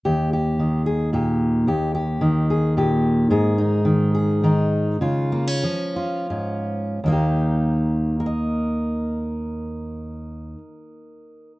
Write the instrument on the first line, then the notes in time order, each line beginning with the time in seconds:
steel-string acoustic guitar
0.05 D#2 G4
0.33 G4
0.59 D#3
0.86 G#4
1.13 A#2 G4
1.67 D#2 G4
1.95 G4
2.21 D#3
2.50 G#4
2.77 A#2 G4
3.31 G#2 G#4
3.58 D#4
3.85 D#3
4.15 G#4
4.43 D#3 D#4
5.01 C#3 F4
5.32 A#3
5.47 C#4
5.63 F3
5.96 F4
6.30 G#2 C#4
7.04 D#2 D#3 A#3
7.09 D#4 G4
8.20 A#4
8.26 D#5